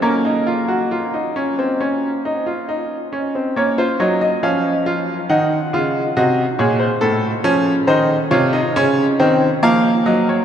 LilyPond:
<<
  \new Staff \with { instrumentName = "Grand piano" } { \time 4/4 \key bes \minor \tempo 4 = 69 << { bes'2.~ bes'8 r8 | des''16 c''16 des''16 ees''16 f''4 ges''4 ees''8 des''16 c''16~ | c''4 c''8 des''4. f''8 ees''16 des''16 | } \\ { des'16 ees'16 f'16 ges'16 f'16 ees'16 des'16 c'16 des'8 ees'16 f'16 ees'8 des'16 c'16 | des'16 f'16 ees'8 des'8 f'8 ees'8 f'8 ges'8 aes'8 | a'8 des'8 ees'8 f'16 ees'16 des'8 c'8 bes4 | } >> }
  \new Staff \with { instrumentName = "Grand piano" } { \clef bass \time 4/4 \key bes \minor bes2.~ bes8 r8 | bes8 ges8 f4 ees8 des8 c8 bes,8 | a,8 f8 ees8 c8 des8 ees8 f8 ges8 | }
>>